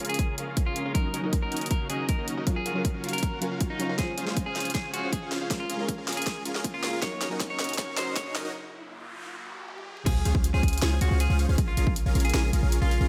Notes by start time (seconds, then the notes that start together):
Already playing: C#3 G#3 A#3 C#4 F4 A#4
0.00 A#1 C#4 F4 G#4 A#4 F5
0.05 closed hi-hat
0.09 G#4, closed hi-hat
0.14 closed hi-hat
0.19 C#4 F4 G#4 A#4 G#5, kick, closed hi-hat
0.38 A#1 C#4 F4 G#4 A#4 F5, closed hi-hat
0.47 A#1 C#4 F4 G#4 A#4 F5
0.57 kick, closed hi-hat
0.66 A#1 C#4 F4 G#4 A#4 F5
0.76 closed hi-hat
0.85 A#1 C#4 F4 G#4 A#4 F5
0.94 C#3 F#3 C#4 D#4 F#4 A#4 D#5, kick, closed hi-hat
1.14 C#4 D#4 F#4 A#4 D#5, closed hi-hat
1.21 F#3 C#4 D#4 F#4 A#4 D#5
1.33 kick, closed hi-hat
1.42 C#4 D#4 F#4 A#4 D#5
1.52 C#4 D#4 F#4 A#4 D#5, closed hi-hat
1.57 closed hi-hat
1.61 closed hi-hat
1.66 closed hi-hat
1.71 C#4 D#4 F#4 A#4 F5, kick, closed hi-hat
1.90 C#4 D#4 F#4 G#4 A#4 D#5, closed hi-hat
1.99 C#4 D#4 F#4 A#4 D#5
2.09 A#4, kick, closed hi-hat
2.18 C#4 D#4 F#4 A#4 D#5
2.28 closed hi-hat
2.37 D#2 C#4 D#4 F#4 A#4 D#5
2.46 F#3 C#4 F4 F#4 A#4 F5, kick, closed hi-hat
2.56 G#4
2.66 F#1 C#4 F4 F#4 A#4 F5, closed hi-hat
2.73 F#1 F#3 C#4 F4 F#4 A#4 F5
2.77 A#4
2.85 kick, closed hi-hat
2.94 F#1 C#4 F4 F#4 A#4 F5
3.04 F#1 C#4 F4 F#4 A#4 F5, closed hi-hat
3.09 closed hi-hat
3.13 A#4, closed hi-hat
3.18 closed hi-hat
3.23 C#4 F4 F#4 A#4 F#5, kick, closed hi-hat
3.41 F#3 C#4 F4 F#4 A#4 F5, closed hi-hat
3.51 C#4 F4 F#4 A#4 F5
3.61 kick, closed hi-hat
3.70 C#4 D#4 F4 F#4 A#4 F5
3.79 F#3 C#4 F4 C#5, closed hi-hat
3.89 F#2 C#4 F4 F#4 A#4 F5
3.98 C#2 G#3 C#4 F4 G#4 C5 F5, kick, snare, closed hi-hat, riser
4.18 C#2 C#4 F4 G#4 C5 F5, closed hi-hat
4.25 C#2 G#3 C#4 F4 G#4 C5 F5, snare
4.29 C5
4.37 kick, closed hi-hat
4.46 C#2 C#4 F4 G#4 C5 F5
4.55 C#2 C#4 F4 G#4 C5 F5, snare, closed hi-hat
4.60 closed hi-hat
4.65 closed hi-hat
4.70 closed hi-hat
4.75 C#2 C#4 F4 G#4 C5 G#5, kick, snare, closed hi-hat
4.93 C#2 C#4 F4 F#4 G#4 C5 F5, closed hi-hat
5.03 C#2 C#4 F4 G#4 C5 F5
5.13 G#4, kick, closed hi-hat
5.22 C#2 C#4 F4 G#4 C5 F5
5.32 snare, open hi-hat
5.41 C#2 C#4 F4 G#4 C5 F5
5.49 A#1 C#3 G#3 A#3 C#4 F4 G#4 A#4 F5, kick, snare, closed hi-hat
5.60 F4
5.69 A#1 C#4 F4 G#4 A#4 F5, closed hi-hat
5.77 A#1 G#3 C#4 F4 G#4 A#4 F5
5.81 A#4
5.88 kick, closed hi-hat
5.98 A#1 C#4 F4 G#4 A#4 F5
6.07 A#1 C#4 F4 G#4 A#4 F5, snare, closed hi-hat
6.12 closed hi-hat
6.17 G#4, closed hi-hat
6.22 closed hi-hat
6.26 C#4 F4 G#4 A#4 G#5, kick, snare, closed hi-hat
6.45 A#1 C#4 F4 G#4 A#4 F5, closed hi-hat
6.55 A#1 C#4 F4 G#4 A#4 F5, snare
6.64 kick, closed hi-hat
6.74 A#1 C#4 F4 G#4 A#4 F5
6.83 snare, open hi-hat
6.93 A#1 C#4 F4 G#4 A#4 F5
7.01 F#3 C#4 D#4 F#4 A#4 C#5 D#5, kick, snare, closed hi-hat
7.21 C#4 D#4 F#4 A#4 D#5, snare, closed hi-hat
7.29 F#3 C#4 D#4 F#4 A#4 D#5
7.33 A#4
7.40 kick, snare, closed hi-hat
7.50 C#4 D#4 F#4 A#4 C#5 D#5
7.59 C#4 D#4 F#4 A#4 D#5, snare, closed hi-hat
7.64 closed hi-hat
7.69 closed hi-hat
7.73 closed hi-hat
7.78 C#4 D#4 F#4 A#4 C#5 F5, kick, snare, closed hi-hat
7.97 C#4 D#4 F#4 A#4 C5 D#5, snare, closed hi-hat
8.07 C#4 D#4 F#4 A#4 D#5
8.16 C#5, kick, snare, closed hi-hat
8.26 D#2 C#4 D#4 F#4 A#4 D#5
8.35 snare, open hi-hat
8.45 C#4 D#4 F#4 A#4 D#5
8.54 F4, noise sweep
9.68 high tom
9.78 high tom
9.97 mid tom
10.06 C#2 C#3 G#3 C4 C#4 F4 G#4 C5 F5, kick, closed hi-hat, crash
10.25 C#2 C#4 F4 G#4 C5 F5, closed hi-hat
10.35 C#2 C#4 F4 G#4 C5 F5, kick
10.44 closed hi-hat
10.54 C#2 C#4 F4 G#4 C5 F5
10.63 C#2 C#4 F4 G#4 C5 F5, kick, closed hi-hat
10.68 closed hi-hat
10.73 closed hi-hat
10.78 closed hi-hat
10.82 C#2 C#4 F4 G#4 C5 G#5, snare, closed hi-hat
11.01 C#2 C#4 F4 F#4 G#4 C5 F5, closed hi-hat
11.11 C#2 C#4 F4 G#4 C5 F5
11.20 G#4, closed hi-hat
11.30 C#2 C#4 F4 G#4 C5 F5
11.39 open hi-hat
11.49 C#2 C#4 F4 G#4 C5 F5
11.58 A#1 A#3 C#4 F4 G#4 A#4 F5, kick, closed hi-hat
11.68 F4
11.77 A#1 C#4 F4 G#4 A#4 F5, closed hi-hat
11.87 A#1 C#4 F4 G#4 A#4 F5, kick
11.96 closed hi-hat
12.06 A#1 C#4 F4 G#4 A#4 F5
12.15 A#1 C#4 F4 G#4 A#4 F5, closed hi-hat
12.20 closed hi-hat
12.25 G#4, closed hi-hat
12.29 closed hi-hat
12.34 A#1 C#4 F4 G#4 A#4 G#5, snare, closed hi-hat
12.53 A#1 C#4 F4 G#4 A#4 F5, closed hi-hat
12.63 A#1 C#4 F4 G#4 A#4 F5
12.72 closed hi-hat
12.82 A#1 C#4 F4 G#4 A#4 F5
12.91 open hi-hat
13.01 A#1 C#4 F4 G#4 A#4 F5